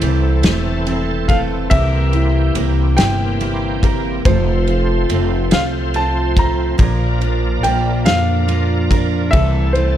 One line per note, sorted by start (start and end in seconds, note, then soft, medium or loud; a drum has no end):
0.00 0.41 C2 medium
0.00 1.71 C3 medium
0.00 1.68 E3 medium
0.00 1.71 E3 medium
0.00 0.43 A3 medium
0.00 1.68 A3 medium
0.00 0.86 C4 medium
0.00 4.20 C4 medium
0.00 0.88 C4 medium
0.00 1.75 E4 medium
0.00 1.28 A4 medium
0.00 1.68 A4 medium
0.00 0.82 C5 loud
0.00 ride medium
0.43 1.66 E1 medium
0.43 1.29 A3 medium
0.43 snare medium
0.43 ride medium
0.86 2.14 C4 medium
0.86 2.57 C4 medium
0.86 ride soft
1.28 1.80 A3 medium
1.28 1.71 A4 medium
1.28 1.38 F5 medium
1.28 kick medium
1.28 ride medium
1.70 2.52 C2 loud
1.70 4.26 C3 medium
1.70 4.25 E3 medium
1.70 4.23 E3 medium
1.70 4.22 A#3 medium
1.70 4.23 G4 medium
1.70 3.40 G4 medium
1.70 3.83 A#4 medium
1.70 2.51 E5 loud
1.70 kick loud
1.70 ride medium
2.13 2.99 C4 medium
2.13 2.98 E4 medium
2.13 ride soft
2.55 2.95 C2 loud
2.55 4.34 A#3 medium
2.55 3.40 A#3 medium
2.55 ride medium
2.97 4.21 G1 medium
2.97 3.83 C4 medium
2.97 4.34 E4 medium
2.97 3.78 G5 loud
2.97 snare loud
2.97 ride medium
3.40 4.34 A#3 medium
3.40 4.25 G4 medium
3.40 ride soft
3.83 4.68 C4 medium
3.83 4.26 A#4 medium
3.83 kick medium
3.83 ride medium
4.25 5.06 F1 loud
4.25 9.30 F3 medium
4.25 6.77 F3 medium
4.25 7.77 F3 medium
4.25 6.77 A3 medium
4.25 6.77 C4 medium
4.25 5.94 F4 medium
4.25 6.38 A4 medium
4.25 5.48 C5 medium
4.25 6.77 C5 medium
4.25 kick loud
4.25 ride medium
4.67 5.52 C4 medium
4.67 5.52 F4 medium
4.67 ride soft
5.10 5.50 F1 medium
5.10 6.88 A3 medium
5.10 5.93 C4 medium
5.10 ride medium
5.51 6.75 C2 medium
5.51 6.35 C4 medium
5.51 7.21 F4 medium
5.51 5.62 F5 medium
5.51 snare loud
5.51 ride medium
5.94 6.88 C4 medium
5.94 6.78 F4 medium
5.94 6.35 A5 medium
5.94 ride soft
6.36 6.87 C4 medium
6.36 7.19 A#5 medium
6.36 kick medium
6.36 ride medium
6.78 7.60 A#1 loud
6.78 9.34 A#2 medium
6.78 9.33 F3 medium
6.78 9.31 A#3 medium
6.78 9.31 D4 medium
6.78 8.47 F4 medium
6.78 9.31 A#4 medium
6.78 8.90 A#4 medium
6.78 kick loud
6.78 ride medium
7.21 8.04 D4 medium
7.21 8.06 D4 medium
7.21 ride soft
7.63 8.03 A#1 medium
7.63 9.42 A#3 medium
7.63 8.47 A#3 medium
7.63 8.07 G5 loud
7.63 ride medium
8.05 9.30 F2 medium
8.05 8.89 D4 medium
8.05 9.42 D4 medium
8.05 9.29 F5 loud
8.05 snare loud
8.05 ride medium
8.48 9.42 A#3 medium
8.48 9.42 F4 medium
8.48 ride soft
8.90 9.33 D4 medium
8.90 9.33 A#4 medium
8.90 kick medium
8.90 ride medium
9.31 9.97 C2 loud
9.31 9.97 C3 medium
9.31 9.97 E3 medium
9.31 9.97 A3 medium
9.31 9.97 C4 medium
9.31 9.97 A4 medium
9.31 9.71 E5 loud
9.31 kick loud
9.31 ride medium
9.73 9.97 A3 medium
9.73 9.97 E4 medium
9.73 9.97 C5 medium
9.73 ride soft